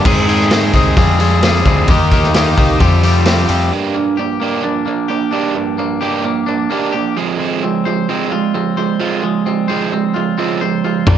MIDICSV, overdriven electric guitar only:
0, 0, Header, 1, 2, 480
1, 0, Start_track
1, 0, Tempo, 459770
1, 49, Time_signature, 4, 2, 24, 8
1, 11671, End_track
2, 0, Start_track
2, 0, Title_t, "Overdriven electric guitar"
2, 0, Program_c, 0, 29
2, 48, Note_on_c, 0, 51, 97
2, 52, Note_on_c, 0, 56, 101
2, 62, Note_on_c, 0, 60, 112
2, 64, Note_on_c, 0, 68, 114
2, 279, Note_off_c, 0, 51, 0
2, 281, Note_off_c, 0, 56, 0
2, 286, Note_off_c, 0, 60, 0
2, 291, Note_off_c, 0, 68, 0
2, 292, Note_on_c, 0, 51, 91
2, 293, Note_on_c, 0, 56, 85
2, 299, Note_on_c, 0, 60, 88
2, 303, Note_on_c, 0, 68, 93
2, 512, Note_off_c, 0, 51, 0
2, 522, Note_off_c, 0, 56, 0
2, 524, Note_on_c, 0, 51, 82
2, 527, Note_off_c, 0, 60, 0
2, 532, Note_off_c, 0, 68, 0
2, 535, Note_on_c, 0, 56, 94
2, 540, Note_on_c, 0, 60, 81
2, 544, Note_on_c, 0, 68, 84
2, 767, Note_off_c, 0, 51, 0
2, 775, Note_off_c, 0, 56, 0
2, 778, Note_off_c, 0, 60, 0
2, 780, Note_off_c, 0, 68, 0
2, 780, Note_on_c, 0, 51, 79
2, 788, Note_on_c, 0, 56, 87
2, 791, Note_on_c, 0, 60, 85
2, 792, Note_on_c, 0, 68, 94
2, 999, Note_off_c, 0, 51, 0
2, 1003, Note_off_c, 0, 56, 0
2, 1005, Note_off_c, 0, 60, 0
2, 1005, Note_off_c, 0, 68, 0
2, 1010, Note_on_c, 0, 53, 100
2, 1014, Note_on_c, 0, 56, 105
2, 1021, Note_on_c, 0, 60, 97
2, 1027, Note_on_c, 0, 68, 114
2, 1245, Note_off_c, 0, 53, 0
2, 1249, Note_off_c, 0, 56, 0
2, 1256, Note_off_c, 0, 60, 0
2, 1256, Note_off_c, 0, 68, 0
2, 1257, Note_on_c, 0, 53, 93
2, 1261, Note_on_c, 0, 56, 93
2, 1269, Note_on_c, 0, 60, 93
2, 1269, Note_on_c, 0, 68, 92
2, 1486, Note_off_c, 0, 53, 0
2, 1491, Note_off_c, 0, 56, 0
2, 1493, Note_off_c, 0, 60, 0
2, 1499, Note_on_c, 0, 53, 82
2, 1501, Note_off_c, 0, 68, 0
2, 1504, Note_on_c, 0, 56, 90
2, 1506, Note_on_c, 0, 60, 90
2, 1514, Note_on_c, 0, 68, 94
2, 1726, Note_off_c, 0, 53, 0
2, 1732, Note_off_c, 0, 56, 0
2, 1732, Note_off_c, 0, 60, 0
2, 1739, Note_on_c, 0, 53, 78
2, 1741, Note_off_c, 0, 68, 0
2, 1744, Note_on_c, 0, 56, 92
2, 1744, Note_on_c, 0, 60, 96
2, 1754, Note_on_c, 0, 68, 95
2, 1958, Note_off_c, 0, 53, 0
2, 1961, Note_off_c, 0, 56, 0
2, 1961, Note_off_c, 0, 60, 0
2, 1966, Note_off_c, 0, 68, 0
2, 1980, Note_on_c, 0, 58, 91
2, 1985, Note_on_c, 0, 63, 105
2, 1994, Note_on_c, 0, 67, 99
2, 2203, Note_off_c, 0, 58, 0
2, 2210, Note_off_c, 0, 63, 0
2, 2216, Note_off_c, 0, 67, 0
2, 2216, Note_on_c, 0, 58, 85
2, 2222, Note_on_c, 0, 63, 84
2, 2229, Note_on_c, 0, 67, 89
2, 2441, Note_off_c, 0, 58, 0
2, 2451, Note_off_c, 0, 63, 0
2, 2454, Note_on_c, 0, 58, 85
2, 2457, Note_off_c, 0, 67, 0
2, 2464, Note_on_c, 0, 63, 82
2, 2469, Note_on_c, 0, 67, 95
2, 2681, Note_off_c, 0, 58, 0
2, 2689, Note_off_c, 0, 63, 0
2, 2693, Note_on_c, 0, 58, 80
2, 2695, Note_off_c, 0, 67, 0
2, 2702, Note_on_c, 0, 63, 89
2, 2708, Note_on_c, 0, 67, 89
2, 2915, Note_off_c, 0, 58, 0
2, 2919, Note_off_c, 0, 63, 0
2, 2922, Note_off_c, 0, 67, 0
2, 2929, Note_on_c, 0, 53, 87
2, 2937, Note_on_c, 0, 60, 88
2, 2942, Note_on_c, 0, 65, 113
2, 2945, Note_on_c, 0, 67, 104
2, 3164, Note_off_c, 0, 53, 0
2, 3169, Note_off_c, 0, 60, 0
2, 3172, Note_off_c, 0, 65, 0
2, 3177, Note_on_c, 0, 53, 81
2, 3178, Note_off_c, 0, 67, 0
2, 3181, Note_on_c, 0, 60, 95
2, 3184, Note_on_c, 0, 65, 97
2, 3191, Note_on_c, 0, 67, 94
2, 3391, Note_off_c, 0, 53, 0
2, 3397, Note_off_c, 0, 60, 0
2, 3404, Note_on_c, 0, 53, 80
2, 3405, Note_off_c, 0, 67, 0
2, 3407, Note_off_c, 0, 65, 0
2, 3410, Note_on_c, 0, 60, 88
2, 3418, Note_on_c, 0, 67, 89
2, 3419, Note_on_c, 0, 65, 84
2, 3631, Note_off_c, 0, 53, 0
2, 3640, Note_off_c, 0, 60, 0
2, 3642, Note_off_c, 0, 65, 0
2, 3644, Note_on_c, 0, 53, 88
2, 3645, Note_off_c, 0, 67, 0
2, 3653, Note_on_c, 0, 60, 92
2, 3654, Note_on_c, 0, 65, 86
2, 3658, Note_on_c, 0, 67, 92
2, 3870, Note_off_c, 0, 53, 0
2, 3874, Note_off_c, 0, 60, 0
2, 3875, Note_off_c, 0, 65, 0
2, 3877, Note_off_c, 0, 67, 0
2, 3888, Note_on_c, 0, 58, 80
2, 3893, Note_on_c, 0, 62, 90
2, 3899, Note_on_c, 0, 67, 98
2, 4112, Note_off_c, 0, 58, 0
2, 4114, Note_off_c, 0, 62, 0
2, 4118, Note_off_c, 0, 67, 0
2, 4132, Note_on_c, 0, 58, 63
2, 4134, Note_on_c, 0, 62, 76
2, 4344, Note_off_c, 0, 58, 0
2, 4346, Note_off_c, 0, 62, 0
2, 4375, Note_on_c, 0, 58, 59
2, 4378, Note_on_c, 0, 62, 74
2, 4586, Note_off_c, 0, 58, 0
2, 4587, Note_off_c, 0, 62, 0
2, 4609, Note_on_c, 0, 58, 81
2, 4619, Note_on_c, 0, 62, 85
2, 4626, Note_on_c, 0, 67, 77
2, 4833, Note_off_c, 0, 58, 0
2, 4838, Note_off_c, 0, 62, 0
2, 4841, Note_off_c, 0, 67, 0
2, 4845, Note_on_c, 0, 58, 75
2, 4849, Note_on_c, 0, 62, 78
2, 5061, Note_off_c, 0, 58, 0
2, 5063, Note_off_c, 0, 62, 0
2, 5086, Note_on_c, 0, 58, 60
2, 5093, Note_on_c, 0, 62, 79
2, 5302, Note_off_c, 0, 58, 0
2, 5305, Note_off_c, 0, 62, 0
2, 5321, Note_on_c, 0, 58, 69
2, 5326, Note_on_c, 0, 62, 81
2, 5539, Note_off_c, 0, 58, 0
2, 5542, Note_off_c, 0, 62, 0
2, 5558, Note_on_c, 0, 58, 86
2, 5564, Note_on_c, 0, 62, 95
2, 5573, Note_on_c, 0, 67, 93
2, 5781, Note_off_c, 0, 58, 0
2, 5787, Note_off_c, 0, 62, 0
2, 5794, Note_on_c, 0, 58, 66
2, 5795, Note_off_c, 0, 67, 0
2, 5800, Note_on_c, 0, 62, 75
2, 6016, Note_off_c, 0, 58, 0
2, 6019, Note_off_c, 0, 62, 0
2, 6044, Note_on_c, 0, 58, 66
2, 6045, Note_on_c, 0, 62, 72
2, 6261, Note_off_c, 0, 58, 0
2, 6261, Note_off_c, 0, 62, 0
2, 6281, Note_on_c, 0, 58, 84
2, 6287, Note_on_c, 0, 62, 83
2, 6291, Note_on_c, 0, 67, 86
2, 6509, Note_off_c, 0, 58, 0
2, 6512, Note_off_c, 0, 62, 0
2, 6514, Note_off_c, 0, 67, 0
2, 6523, Note_on_c, 0, 58, 61
2, 6529, Note_on_c, 0, 62, 70
2, 6740, Note_off_c, 0, 58, 0
2, 6743, Note_off_c, 0, 62, 0
2, 6764, Note_on_c, 0, 58, 73
2, 6769, Note_on_c, 0, 62, 79
2, 6981, Note_off_c, 0, 58, 0
2, 6983, Note_off_c, 0, 62, 0
2, 7001, Note_on_c, 0, 58, 88
2, 7009, Note_on_c, 0, 62, 82
2, 7016, Note_on_c, 0, 67, 96
2, 7229, Note_off_c, 0, 58, 0
2, 7233, Note_off_c, 0, 62, 0
2, 7236, Note_off_c, 0, 67, 0
2, 7248, Note_on_c, 0, 58, 66
2, 7256, Note_on_c, 0, 62, 71
2, 7463, Note_off_c, 0, 58, 0
2, 7467, Note_off_c, 0, 62, 0
2, 7484, Note_on_c, 0, 53, 93
2, 7491, Note_on_c, 0, 56, 86
2, 7497, Note_on_c, 0, 60, 86
2, 7711, Note_off_c, 0, 53, 0
2, 7714, Note_off_c, 0, 56, 0
2, 7717, Note_off_c, 0, 60, 0
2, 7725, Note_on_c, 0, 53, 78
2, 7733, Note_on_c, 0, 56, 85
2, 7737, Note_on_c, 0, 60, 94
2, 7951, Note_off_c, 0, 53, 0
2, 7955, Note_off_c, 0, 56, 0
2, 7957, Note_off_c, 0, 60, 0
2, 7976, Note_on_c, 0, 53, 73
2, 7980, Note_on_c, 0, 56, 68
2, 8187, Note_off_c, 0, 53, 0
2, 8189, Note_off_c, 0, 56, 0
2, 8211, Note_on_c, 0, 53, 62
2, 8214, Note_on_c, 0, 56, 77
2, 8424, Note_off_c, 0, 53, 0
2, 8426, Note_off_c, 0, 56, 0
2, 8446, Note_on_c, 0, 53, 78
2, 8456, Note_on_c, 0, 56, 87
2, 8459, Note_on_c, 0, 60, 85
2, 8671, Note_off_c, 0, 53, 0
2, 8676, Note_off_c, 0, 56, 0
2, 8678, Note_off_c, 0, 60, 0
2, 8690, Note_on_c, 0, 53, 70
2, 8697, Note_on_c, 0, 56, 75
2, 8904, Note_off_c, 0, 53, 0
2, 8908, Note_off_c, 0, 56, 0
2, 8918, Note_on_c, 0, 53, 67
2, 8926, Note_on_c, 0, 56, 75
2, 9138, Note_off_c, 0, 53, 0
2, 9142, Note_off_c, 0, 56, 0
2, 9163, Note_on_c, 0, 53, 67
2, 9169, Note_on_c, 0, 56, 78
2, 9381, Note_off_c, 0, 53, 0
2, 9384, Note_off_c, 0, 56, 0
2, 9392, Note_on_c, 0, 53, 89
2, 9396, Note_on_c, 0, 56, 98
2, 9404, Note_on_c, 0, 60, 82
2, 9625, Note_off_c, 0, 53, 0
2, 9627, Note_off_c, 0, 56, 0
2, 9631, Note_off_c, 0, 60, 0
2, 9636, Note_on_c, 0, 53, 73
2, 9642, Note_on_c, 0, 56, 75
2, 9857, Note_off_c, 0, 53, 0
2, 9860, Note_off_c, 0, 56, 0
2, 9883, Note_on_c, 0, 53, 65
2, 9888, Note_on_c, 0, 56, 75
2, 10101, Note_off_c, 0, 53, 0
2, 10103, Note_off_c, 0, 56, 0
2, 10121, Note_on_c, 0, 53, 84
2, 10125, Note_on_c, 0, 56, 82
2, 10132, Note_on_c, 0, 60, 102
2, 10349, Note_off_c, 0, 53, 0
2, 10352, Note_off_c, 0, 56, 0
2, 10355, Note_off_c, 0, 60, 0
2, 10369, Note_on_c, 0, 53, 62
2, 10373, Note_on_c, 0, 56, 74
2, 10584, Note_off_c, 0, 53, 0
2, 10586, Note_off_c, 0, 56, 0
2, 10607, Note_on_c, 0, 53, 75
2, 10611, Note_on_c, 0, 56, 77
2, 10823, Note_off_c, 0, 53, 0
2, 10825, Note_off_c, 0, 56, 0
2, 10842, Note_on_c, 0, 53, 91
2, 10848, Note_on_c, 0, 56, 91
2, 10852, Note_on_c, 0, 60, 91
2, 11070, Note_off_c, 0, 53, 0
2, 11073, Note_off_c, 0, 56, 0
2, 11076, Note_off_c, 0, 60, 0
2, 11093, Note_on_c, 0, 53, 75
2, 11096, Note_on_c, 0, 56, 86
2, 11307, Note_off_c, 0, 53, 0
2, 11308, Note_off_c, 0, 56, 0
2, 11322, Note_on_c, 0, 53, 67
2, 11328, Note_on_c, 0, 56, 76
2, 11541, Note_off_c, 0, 53, 0
2, 11544, Note_off_c, 0, 56, 0
2, 11560, Note_on_c, 0, 53, 78
2, 11573, Note_on_c, 0, 58, 90
2, 11574, Note_on_c, 0, 62, 102
2, 11671, Note_off_c, 0, 53, 0
2, 11671, Note_off_c, 0, 58, 0
2, 11671, Note_off_c, 0, 62, 0
2, 11671, End_track
0, 0, End_of_file